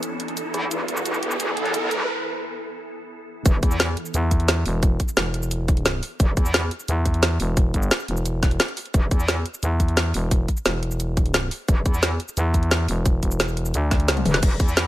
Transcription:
Already playing: synth drone E3 B3 E4 A4, riser
0.03 closed hi-hat, shaker
0.20 closed hi-hat
0.28 closed hi-hat
0.37 closed hi-hat, shaker
0.54 wobble bass E2, closed hi-hat, shaker
0.71 wobble bass E1, closed hi-hat, shaker
0.88 closed hi-hat, shaker
0.97 shaker
1.06 closed hi-hat, shaker
1.14 shaker
1.23 wobble bass E1, closed hi-hat
1.31 shaker
1.40 closed hi-hat, shaker
1.57 wobble bass B1, closed hi-hat
1.66 closed hi-hat
1.74 closed hi-hat, shaker
1.91 wobble bass E1, closed hi-hat, shaker
3.46 wobble bass E1, kick, closed hi-hat, shaker
3.63 wobble bass E2, kick, closed hi-hat, shaker
3.71 shaker
3.80 snare, closed hi-hat, shaker
3.97 closed hi-hat
4.06 shaker
4.14 fm bass E2, closed hi-hat, shaker
4.31 kick, closed hi-hat, shaker
4.40 closed hi-hat
4.48 snare, closed hi-hat, shaker
4.66 fm bass E1, open hi-hat
4.83 kick, closed hi-hat, shaker
5.00 kick, closed hi-hat, shaker
5.08 shaker
5.17 fm bass E1, snare, closed hi-hat, shaker
5.34 closed hi-hat
5.43 shaker
5.51 closed hi-hat, shaker
5.68 kick, closed hi-hat, shaker
5.77 closed hi-hat
5.86 snare, closed hi-hat, shaker
6.03 open hi-hat
6.20 wobble bass E1, kick, closed hi-hat, shaker
6.37 wobble bass E2, kick, closed hi-hat, shaker
6.46 shaker
6.54 snare, closed hi-hat, shaker
6.71 closed hi-hat
6.80 shaker
6.88 fm bass E2, closed hi-hat, shaker
7.06 kick, closed hi-hat, shaker
7.14 closed hi-hat
7.23 snare, closed hi-hat, shaker
7.40 fm bass E1, open hi-hat
7.57 kick, closed hi-hat, shaker
7.74 fm bass G1, kick, closed hi-hat, shaker
7.83 shaker
7.91 snare, closed hi-hat, shaker
8.00 shaker
8.08 fm bass E1, closed hi-hat
8.17 shaker
8.26 closed hi-hat, shaker
8.43 kick, snare, closed hi-hat, shaker
8.51 closed hi-hat
8.60 snare, closed hi-hat, shaker
8.68 closed hi-hat
8.77 open hi-hat
8.86 closed hi-hat
8.94 wobble bass E1, kick, closed hi-hat, shaker
9.11 wobble bass E2, kick, closed hi-hat, shaker
9.20 shaker
9.28 snare, closed hi-hat, shaker
9.46 closed hi-hat
9.54 shaker
9.63 fm bass E2, closed hi-hat, shaker
9.80 kick, closed hi-hat, shaker
9.88 closed hi-hat
9.97 snare, closed hi-hat, shaker
10.14 fm bass E1, open hi-hat
10.31 kick, closed hi-hat, shaker
10.48 kick, closed hi-hat, shaker
10.57 shaker
10.66 fm bass E1, snare, closed hi-hat, shaker
10.83 closed hi-hat
10.91 shaker
11.00 closed hi-hat, shaker
11.17 kick, closed hi-hat, shaker
11.26 closed hi-hat
11.34 snare, closed hi-hat, shaker
11.51 open hi-hat
11.68 wobble bass E1, kick, closed hi-hat, shaker
11.86 wobble bass E2, kick, closed hi-hat, shaker
11.94 shaker
12.03 snare, closed hi-hat, shaker
12.20 closed hi-hat
12.28 shaker
12.37 fm bass E2, closed hi-hat, shaker
12.54 kick, closed hi-hat, shaker
12.63 closed hi-hat
12.71 snare, closed hi-hat, shaker
12.88 fm bass E1, open hi-hat
13.06 kick, closed hi-hat, shaker
13.23 fm bass E1, kick, closed hi-hat, shaker
13.31 shaker
13.40 snare, closed hi-hat, shaker
13.48 shaker
13.57 closed hi-hat
13.66 shaker
13.74 fm bass D2, closed hi-hat, shaker
13.91 kick, snare, closed hi-hat, shaker
14.00 closed hi-hat
14.08 snare, closed hi-hat, shaker
14.17 closed hi-hat, high tom
14.26 wobble bass E1, open hi-hat, mid tom
14.34 snare, closed hi-hat
14.43 wobble bass E1, kick, closed hi-hat, crash, shaker
14.60 wobble bass E2, kick, closed hi-hat, shaker
14.68 shaker
14.77 snare, closed hi-hat, shaker

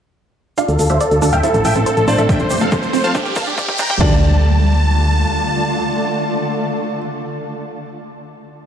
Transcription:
0.58 ambient pad A3, synth arpeggio sound D4, felt piano F4 F5, supersaw synth D5 F5, synth pluck F5, closed hi-hat, riser, shaker
0.68 fm bass D2, synth pluck A4, supersaw synth A4, closed hi-hat, shaker
0.79 fm bass D2, synth pluck A4, supersaw synth A4, synth arpeggio sound A4, open hi-hat, shaker
0.90 fm bass D2, synth arpeggio sound D4, supersaw synth C5 E5, synth pluck E5, closed hi-hat, shaker
1.00 synth pluck A4, supersaw synth A4, synth arpeggio sound D5, closed hi-hat, shaker
1.11 fm bass D2, supersaw synth A4, synth pluck A4, closed hi-hat, shaker
1.22 fm bass D2, synth arpeggio sound D4, synth pluck A4, supersaw synth A4, open hi-hat, shaker
1.33 fm bass D1, supersaw synth E5 G5, synth arpeggio sound F5, synth pluck G5, closed hi-hat, shaker
1.43 synth arpeggio sound C4, felt piano E4 E5, supersaw synth A4, synth pluck A4, closed hi-hat, shaker
1.54 fm bass A1, supersaw synth A4, synth pluck A4, closed hi-hat, shaker
1.65 fm bass A1, synth arpeggio sound A4, supersaw synth E5 G5, synth pluck G5, open hi-hat, shaker
1.75 fm bass A1, synth arpeggio sound C4, supersaw synth A4, synth pluck A4, closed hi-hat, shaker
1.86 supersaw synth A4, synth pluck A4, synth arpeggio sound C5, closed hi-hat, shaker
1.97 fm bass A1, supersaw synth A4, synth pluck A4, closed hi-hat, shaker
2.08 fm bass A1, synth arpeggio sound C4, felt piano D4 D5, supersaw synth C5 A5, synth pluck A5, open hi-hat, shaker
2.18 fm bass A1, supersaw synth A4, synth pluck A4, synth arpeggio sound E5, closed hi-hat, shaker
2.29 ambient pad G3, synth arpeggio sound C4, supersaw synth E5 G5, synth pluck G5, kick, closed hi-hat, shaker
2.39 fm bass F1, supersaw synth C5, synth pluck C5, closed hi-hat, shaker
2.50 fm bass F1, synth arpeggio sound G4, supersaw synth C5, synth pluck C5, open hi-hat, shaker
2.61 fm bass F1, synth arpeggio sound C4, supersaw synth A4 F5, synth pluck F5, closed hi-hat, shaker
2.71 synth arpeggio sound A4, supersaw synth C5, synth pluck C5, kick, closed hi-hat, shaker
2.82 fm bass F1, supersaw synth C5, synth pluck C5, closed hi-hat, shaker
2.93 fm bass F1, synth arpeggio sound C4, supersaw synth C5, synth pluck C5, open hi-hat, shaker
3.04 fm bass F2, synth arpeggio sound C5, supersaw synth F5 A5, synth pluck A5, closed hi-hat, shaker
3.15 synth arpeggio sound D4, supersaw synth G4, synth pluck G4, kick, closed hi-hat, shaker
3.25 fm bass G1, supersaw synth G4, synth pluck G4, closed hi-hat, shaker
3.36 fm bass G1, synth arpeggio sound A#4, supersaw synth F5 A5, synth pluck A5, kick, open hi-hat, shaker
3.47 fm bass G1, synth arpeggio sound D4, supersaw synth G4, synth pluck G4, closed hi-hat, shaker
3.58 supersaw synth G4, synth pluck G4, synth arpeggio sound D5, kick, closed hi-hat, shaker
3.68 fm bass G1, supersaw synth G4, synth pluck G4, kick, closed hi-hat, shaker
3.78 fm bass G1, synth arpeggio sound D4, supersaw synth G5 A#5, synth pluck A#5, kick, open hi-hat, shaker
3.90 fm bass G1, supersaw synth G4, synth pluck G4, synth arpeggio sound G5, kick, closed hi-hat, shaker
4.00 fm bass D2, ambient pad D3 A3 F4 D5 A5, synth arpeggio sound D4, felt piano D5, supersaw synth A5, synth pluck A5, kick, crash

